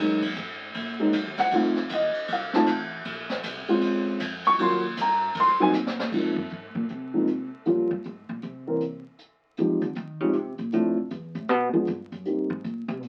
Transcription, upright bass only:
Already playing: F#2
0.36 G#2
0.75 A#2
1.13 F#2
1.25 D#2
1.38 C#2
1.52 F2
1.90 D#2
2.29 C2
2.67 A1
3.06 A#1
3.44 C2
3.68 muted upright bass stroke
3.82 C#2
4.20 F2
4.59 D#2
4.97 G2
5.35 G#2
5.47 F#2
5.60 D#2
5.72 A#2
6.13 A#2
6.36 G2
6.51 G#2
6.75 A#2
6.90 C3
7.67 A#2
7.91 G2
8.06 G#2
8.29 A#2
8.43 C3
9.58 F3
9.82 D3
9.96 D#3
10.20 C#3
10.35 C3
10.59 A#2
10.73 A2
10.97 C2
11.11 E2
11.35 A2
11.49 B2
11.73 G#2
11.88 G2
12.12 F#2
12.26 G2
12.50 G#2
12.64 A#2
12.88 C3
13.03 A#2

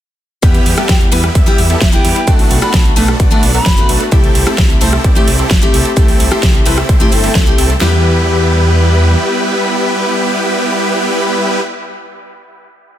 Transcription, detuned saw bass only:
0.43 E2
0.66 E2
0.89 E2
1.12 E2
1.35 E2
1.58 E2
1.81 E1
2.05 E2
2.28 B1
2.51 B1
2.74 B1
2.97 B1
3.20 B1
3.43 B1
3.66 F#1
3.89 B1
4.12 C2
4.35 C2
4.58 C2
4.81 C2
5.04 C2
5.28 C2
5.51 G1
5.74 C2
5.97 C2
6.20 C2
6.43 C2
6.66 C2
6.89 C2
7.12 G1
7.35 C2
7.58 C2
7.82 E2

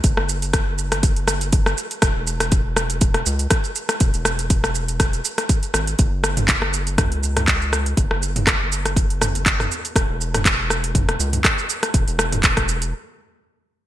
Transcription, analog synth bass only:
0.04 F#1
0.18 F#1
2.02 E1
2.16 E1
3.26 C#2
4.01 E1
4.14 E1
5.74 G#1
5.99 F#1
6.98 C#2
7.97 F#1
8.11 F#1
9.96 E1
10.09 E1
11.20 C#2
11.94 E1
12.07 E1

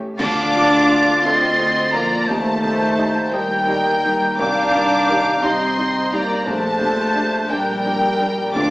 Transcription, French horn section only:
0.19 D4
1.24 C4
1.93 A#3
2.28 A3
3.33 G3
4.40 D5
5.44 C4
6.10 A#3
6.47 A3
7.49 G3
8.56 D4

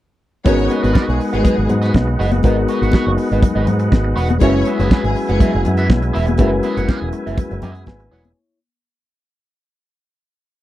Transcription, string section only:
0.46 C#4 C#5
0.83 B3 B4
1.07 G#3 G#4
1.33 G#3 G#4
4.41 C#4 C#5
4.79 B3 B4
5.04 G#3 G#4
5.29 G#3 G#4

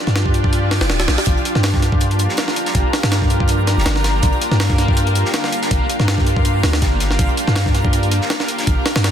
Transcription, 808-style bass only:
0.07 G2
0.81 F1
0.90 D1
1.08 A#1
1.27 G1
1.55 G2
2.75 G1
3.04 G2
3.78 F1
3.86 G1
4.23 G1
4.51 G2
5.71 G1
6.00 G2
6.64 D2
6.82 G1
7.19 G1
7.48 G2
8.67 G1
8.96 G2

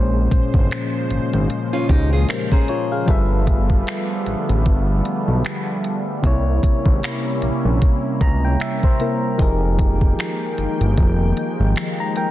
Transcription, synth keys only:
Already playing: A#2 G#3 C#4 C5
2.53 C#4 A#4
2.69 F4 C#5
2.92 G#4 F5
3.06 G3 F4 A4 B4
3.11 E5
6.22 C3 A#3 E4
6.27 C#5
8.22 A#5
8.45 G5
8.61 E5
8.84 C5
8.99 C3 A#3 E4 A#4
9.38 F3 D#4 G4 G#4
9.42 A#4
12.00 A#5
12.17 A#4 G5

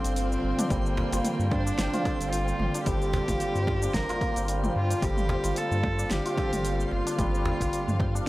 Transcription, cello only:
Already playing: C4
0.70 A#3
1.50 D4
2.31 F4
2.85 G4
3.94 A#4
4.77 F4
5.04 G4
5.58 A4
6.11 G4
6.92 F4

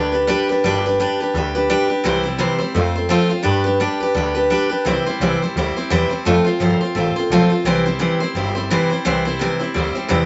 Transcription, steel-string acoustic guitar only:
Already playing: G3 D4 G4 B4
0.12 D4 G4 B4
0.27 G3 D4 G4 B4
0.49 D4 G4 B4
0.64 G3 D4 G4 B4
0.86 D4 G4 B4
1.00 G3 D4 G4 B4
1.20 D4 G4 B4
1.35 G3 D4 G4 B4
1.55 D4 G4 B4
1.70 G3 D4 G4 B4
1.88 D4 G4 B4
2.04 C3 E3 G3 C4 E4 C5
2.23 G3 C4 E4 C5
2.38 C3 E3 G3 C4 E4 C5
2.58 C4 E4 C5
2.62 G3
2.75 A3 C4 F4 C5
2.95 C4 F4 C5
3.09 F3 A3 C4 F4 C5
3.29 C4 F4 C5
3.43 G3 D4 G4 B4
3.64 D4 G4 B4
3.80 G3 D4 G4 B4
4.00 D4 G4 B4
4.15 G3 D4 G4 B4
4.35 D4 G4 B4
4.50 G3 D4 G4 B4
4.69 D4 G4 B4
4.85 C3 E3 G3 C4 E4 C5
5.06 G3 C4 E4 C5
5.21 C3 E3 G3 C4 E4 C5
5.42 G3 C4 E4 C5
5.57 G3 C4 E4 C5
5.76 G3 C4 E4 C5
5.90 C3 E3 G3 C4 E4 C5
6.10 G3 C4 E4 C5
6.25 F3 A3 C4 F4 C5
6.45 C4 F4 C5
6.60 F3 A3 C4 F4 C5
6.81 C4 F4 C5
6.95 A3 C4 F4 C5
7.16 C4 F4 C5
7.32 F3 A3 C4 F4 C5
7.50 C4 F4 C5
7.65 C3 E3 G3 C4 E4 C5
7.86 G3 C4 E4 C5
7.99 C3 E3 G3 C4 E4 C5
8.20 G3 C4 E4 C5
8.35 G3 C4 E4 C5
8.55 G3 C4 E4 C5
8.70 C3 E3 G3 C4 E4 C5
8.90 G3 C4 E4 C5
9.05 C3 E3 G3 C4 E4 C5
9.25 G3 C4 E4 C5
9.39 C3 E3 G3 C4 E4 C5
9.59 C4 E4 C5
9.64 G3
9.74 G3 C4 E4 C5
9.95 G3 C4 E4 C5
10.08 C3 E3 G3 C4 E4 C5

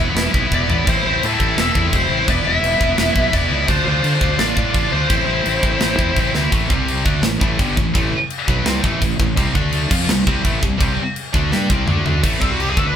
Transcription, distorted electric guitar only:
0.00 B3 E4
0.09 B3 E4
0.16 B3 E4
0.24 B3 E4
0.32 B3 E4
0.39 B3 E4
0.47 B3 E4
0.54 B3 E4
0.62 B3 E4
0.69 B3 E4
0.77 B3 E4
0.86 C4 E4
0.93 C4 E4
1.01 C4 E4
1.09 C4 E4
1.17 C4 E4
1.25 C4 E4
1.33 C4 E4
1.40 C4 E4
1.47 C4 E4
1.56 C4 E4
1.64 C4 E4
1.72 C4 E4
1.79 C4 E4
1.87 C4 E4
1.95 C4 E4
2.03 C4 E4
2.10 C4 E4
2.19 C4 E4
2.27 B3 E4
2.33 B3 E4
2.42 B3 E4
2.50 B3 E4
2.58 B3 E4
2.66 B3 E4
2.74 B3 E4
2.81 B3 E4
2.90 B3 E4
2.98 B3 E4
3.06 B3 E4
3.13 B3 E4
3.21 B3 E4
3.29 B3 E4
3.37 B3 E4
3.45 B3 E4
3.52 B3 E4
3.61 B3 E4
3.69 D4 F4
3.76 D4 F4
3.85 D4 F4
3.91 D4 F4
4.00 D4 F4
4.08 D4 F4
4.16 D4 F4
4.24 D4 F4
4.32 D4 F4
4.40 D4 F4
4.47 D4 F4
4.55 D4 F4
4.63 D4 F4
4.70 D4 F4
4.79 D4 F4
4.86 D4 F4
4.94 D4 F4
5.02 D4 F4
5.09 C4 E4
5.17 C4 E4
5.25 C4 E4
5.34 C4 E4
5.42 C4 E4
5.49 C4 E4
5.57 C4 E4
5.64 C4 E4
5.73 C4 E4
5.80 C4 E4
5.89 C4 E4
5.97 C4 E4
6.04 C4 E4
6.12 C4 E4
6.20 C4 E4
6.28 C4 E4
6.36 C4 E4
6.44 C4 E4
6.52 A2 E3 A3
6.69 C3 G3 C4
7.05 D3 A3 D4
7.22 A2 E3
7.40 A2 E3 A3
7.58 G2 D3 G3
7.77 A2 E3
7.94 A2 E3 A3
8.47 B2 F#3 B3
8.65 C3 G3 C4
8.83 A2 E3 A3
9.00 A2 E3
9.19 A2 E3
9.36 C3 G3 C4
9.54 D3 A3 D4
9.91 F3 C4 F4
10.09 C3 G3
10.27 C3 G3 C4
10.44 A2 E3 A3
10.62 C3 G3
10.78 C3 G3 C4
11.34 D3 A3 D4
11.51 G3 D4 G4
11.69 C3 G3 C4
11.87 D3 A3 D4
12.04 D3 A3 D4
12.22 A2 E3 A3
12.40 C3 G3 C4
12.76 D3 A3 D4

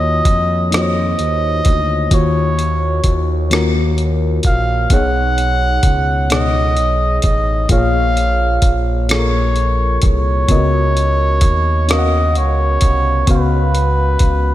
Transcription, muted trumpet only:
Already playing: D#5
0.74 D#5
2.14 C#5
4.46 F5
4.92 F#5
6.32 D#5
7.25 D#5
7.71 F5
9.12 C#5
10.05 C#5
11.92 D#5
12.38 C#5
13.30 B4

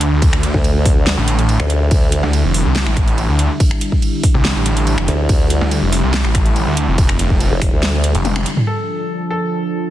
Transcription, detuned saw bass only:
Already playing: D2
0.12 D2
1.17 A1
2.23 D2
2.44 F1
2.65 C2
2.87 A1
3.29 D2
4.34 C2
4.56 A1
4.98 F1
5.61 D2
5.82 F1
6.03 C2
6.25 A1
6.67 D2
6.88 F1
8.15 F1

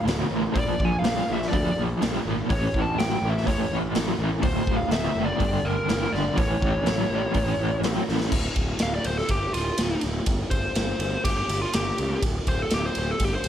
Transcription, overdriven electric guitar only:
0.07 D2 B2
0.31 D2 A2
0.55 A#2 F3
0.80 A#2 F3
1.04 A#2 G3
1.27 A#2 F3
1.52 A#2 F3
1.77 A#2 F3
2.01 A#2 G3
2.26 A#2 F3
2.49 A2 E3
2.75 A2 E3
2.98 A2 F#3
3.22 A2 E3
3.46 A2 E3
3.71 A2 E3
3.95 A2 F#3
4.18 A2 E3
4.41 D2 A2
4.66 D2 A2
4.92 D2 B2
5.16 D2 A2
5.39 G2 D3
5.65 G2 D3
5.88 G2 E3
6.11 G2 D3
6.35 A2 E3
6.61 A2 E3
6.86 A2 F#3
7.10 A2 E3
7.34 A2 E3
7.59 A2 E3
7.84 A2 F#3
8.08 A2 E3

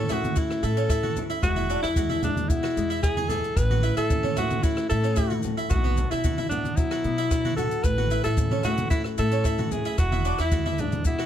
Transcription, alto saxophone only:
Already playing: A4
0.12 F#4
0.38 E4
0.64 A4
1.43 F#4
1.83 E4
2.24 D4
2.49 E4
3.03 G#4
3.28 A4
3.57 B4
3.97 A4
4.38 F#4
4.63 E4
4.89 A4
5.69 F#4
6.11 E4
6.49 D4
6.76 E4
7.56 A4
7.84 B4
8.24 A4
8.64 F#4
8.90 E4
9.19 A4
9.71 G#4
9.99 F#4
10.41 E4
10.80 D4
11.06 E4

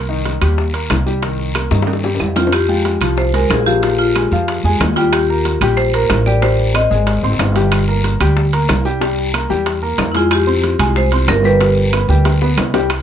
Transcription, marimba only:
2.37 F4
2.53 G4
3.18 C5
3.34 A#4
3.51 G#4
3.67 G4
3.99 F4
4.96 F4
5.12 G4
5.77 C5
5.94 A#4
6.26 D5
6.42 C5
6.75 D#5
10.12 E4
10.17 F4
10.33 G4
10.97 C5
11.29 A#4
11.45 B4

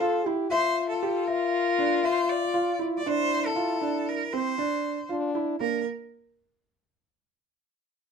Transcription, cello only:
Already playing: C5
0.50 C5
0.89 A4
1.27 A#4
2.04 C5
2.29 D5
2.97 D5
3.07 C5
3.46 A4
4.08 A#4
4.33 C5
5.60 A#4

